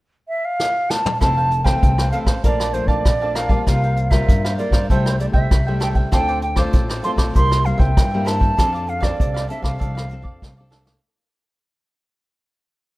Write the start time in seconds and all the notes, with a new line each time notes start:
0.28 E5
0.45 F5
0.60 snare
0.90 A5, snare
1.06 mid tom
1.20 F1 F2 E3 A3 C4 E4 A4 C5 F5 A5, kick, cross-stick, closed hi-hat
1.37 A4 C5 F5, closed hi-hat
1.51 muted cavaquinho stroke, closed hi-hat
1.64 E3 A3 C4 A4 C5 F5 G5, kick, cross-stick, closed hi-hat
1.82 C2 C3, kick, closed hi-hat
1.98 A4 C5 F5, cross-stick
2.12 E3 A3 C4 E4 A4 C5 F5, closed hi-hat
2.25 A1 A4 C5 F5, kick, cross-stick, closed hi-hat
2.43 A#1 A#2 F3 A3 D4 A#4 D5 F5 A5, kick, closed hi-hat
2.60 D5 F5 A5, cross-stick, closed hi-hat
2.73 F3 A3 D4 C5, muted cavaquinho stroke, closed hi-hat
2.86 A#1 D5 F5 A5, kick, closed hi-hat
3.05 A#1 F2, kick, cross-stick, closed hi-hat
3.22 F3 A3 D4 D5 F5 A5
3.35 A#4 D5 F5 A5, cross-stick, closed hi-hat
3.49 G3 A#3 F4 D5 F5 A5, kick, closed hi-hat
3.66 C2 C3 F4 A#4 C5 F5, kick, cross-stick, closed hi-hat
3.83 A#4 C5 F5, closed hi-hat
3.97 muted cavaquinho stroke, closed hi-hat
4.10 G3 A#3 F4 A#4 C5 E5 F5, kick, cross-stick, closed hi-hat
4.29 G2, kick, closed hi-hat
4.45 A#4 C5 F5, cross-stick, closed hi-hat
4.57 G3 A#3 F4 A#4 C5 D5 F5, closed hi-hat
4.70 G2 A#4 C5 F5, kick, cross-stick, closed hi-hat
4.90 C2 C3 G3 A3 E4 A4 C5 E5 G5, kick, closed hi-hat
5.06 C5 E5 G5, cross-stick, closed hi-hat
5.19 G3 A3 E4 D5, muted cavaquinho stroke, closed hi-hat
5.32 C2 C5 E5 G5, kick
5.51 C2 C3, kick, cross-stick, closed hi-hat
5.67 G3 A3 E4 C5 E5 G5
5.80 A4 C5 E5 G5, cross-stick, closed hi-hat
5.95 C5 E5 G5, kick, closed hi-hat
6.12 D2 D3 A3 C4 F4 A4 C5 D5 G5, kick, cross-stick, closed hi-hat
6.28 A4 C5 D5, closed hi-hat
6.42 G5, muted cavaquinho stroke, closed hi-hat
6.56 A3 C4 F4 A4 C5 D5, kick, cross-stick, closed hi-hat
6.73 A1 A2, kick, closed hi-hat
6.89 A4 C5 D5, cross-stick
7.03 A3 C4 F4 A4 C5 D5 C6, closed hi-hat
7.16 A1 A4 C5 D5, kick, cross-stick, closed hi-hat
7.34 C2 C3 G3 A#3 E4 A#4 C5 E5 C6, kick, closed hi-hat
7.50 C5 E5, cross-stick, closed hi-hat
7.64 G3 A#3 E4 F5, muted cavaquinho stroke, closed hi-hat
7.78 C2 C5 E5 G5, kick, closed hi-hat
7.97 G2, kick, cross-stick, closed hi-hat
8.11 G3 A#3 E4 C5 E5
8.25 A#4 C5 E5 A5, cross-stick, closed hi-hat
8.39 C5 E5, kick, closed hi-hat
8.57 F2 F3 C4 D4 A4 D5 F5, kick, cross-stick, closed hi-hat
8.73 A4 D5 F5, closed hi-hat
8.87 F5, muted cavaquinho stroke, closed hi-hat
9.00 C4 D4 A4 D5 F5, kick, cross-stick, closed hi-hat
9.20 C2 C3, kick, closed hi-hat
9.34 A4 D5 F5, cross-stick, closed hi-hat
9.48 C4 D4 A4 D5 E5 F5, closed hi-hat
9.62 C2 A4 D5 F5, kick, cross-stick, closed hi-hat
9.79 C2 F3 D4 A4 D5 F5, kick, closed hi-hat
9.95 A4 D5 F5, cross-stick, closed hi-hat
10.09 C4 D4, muted cavaquinho stroke, closed hi-hat
10.13 A4
10.22 F2 A4 D5 F5, kick
10.42 C2 C3, kick, snare
10.56 C4 D4 A4 D5 F5
10.61 A4
10.70 D4 A4 D5 F5, snare
10.85 A4 D5 F5, snare